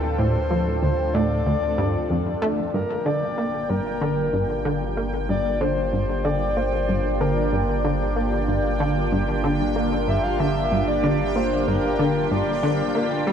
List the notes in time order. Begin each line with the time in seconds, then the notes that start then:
Already playing: D2 C4 D4 F4 A4 G5
0.18 A2 C5
0.50 F3
0.82 D2 C5
1.14 A2 D5
1.46 D2
1.78 G2
2.10 F2
2.42 A3
2.73 G1 G2 A#3 A#4 G5
3.06 D3 D5
3.36 A#3 D4
3.43 F4
3.69 G2 A#4
3.77 G4
4.01 D3
4.33 G2
4.65 D3
4.82 D5
4.97 A#3
5.29 G2 D5
5.61 D3 C5
5.93 G2
6.25 D3 D5
6.57 A#3 C5
6.89 G2
7.21 D3 A#4
7.53 G2
7.84 D3
8.16 A#3
8.48 G2
8.80 D3
9.12 G2
9.44 D3
9.76 A#3
10.07 G2 E5
10.24 F5
10.39 D3 E5
10.71 G2
10.88 D5
11.03 D3
11.35 A#3 C5
11.67 G2 A#4
11.99 D3
12.31 G2 D5
12.55 G5
12.63 D3
12.95 G1 A#3 D5
13.27 G3